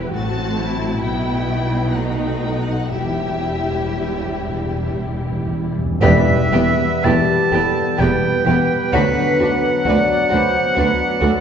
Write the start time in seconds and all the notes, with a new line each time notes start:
Already playing: E1 E3 G3 E4 G4 B4
0.12 A1 A2 C4 F#4 A5
0.36 A3
0.58 F#3 E4
0.80 F#4
1.01 B1 B2 B3 E4 G5
1.26 B3
1.48 G3
1.71 E4
1.92 B2 A3 D#4 F#5
2.03 G5
2.11 F#5
2.17 F#3 G5
2.28 F#5
2.38 A3 G5
2.46 F#5
2.54 G5
2.61 F#5
2.67 D#4
2.92 E1 E2 E3 G3 E4 G4 E5
3.03 E2
3.12 E2
3.21 G3
3.29 E2
3.38 E2
3.46 E2 E4
3.55 E2
3.62 E2
3.72 E2 B4
3.81 E2
3.90 E2
3.98 E2 G4
4.07 E2
4.15 E2
4.24 E2 B4
4.32 E2
4.40 E2
4.48 E2 G4
4.56 E2
4.65 E2
4.73 E2
4.78 B4
4.82 E2
4.90 E2
4.98 E2 G4
5.06 E2
5.14 E2
5.22 E2
5.27 E2 B4
5.38 E2
5.46 E2
5.51 E2 E4
5.62 E2
5.70 E2
5.77 E2 G3
5.86 E2
6.01 E1 E2 E3 G3 B3 G4 B4 E5 B6
6.27 G3
6.52 E1 E2 B3 G4 B4
6.80 B4
7.03 E1 E2 B3 G4 B4 A5
7.30 B4
7.52 E1 E2 B3 G4 A4 B4 B5
7.76 G5
7.98 E1 E2 B3 G4 B4 G5 B5
8.23 B4
8.45 E1 E2 B3 G4 B4
8.70 B4
8.91 D2 D3 F#3 D4 F#4 B4 F#5 B6
9.17 F#3
9.39 D2 D4 F#4 B4
9.65 B4
9.85 D2 D4 F#4 D5
9.89 B4
10.10 D5
10.30 D2 D4 F#4 B4 C5 B5
10.56 F#5
10.76 D2 D4 F#4 B4 B5
11.00 D5
11.21 D2 D4 F#4 A4 B4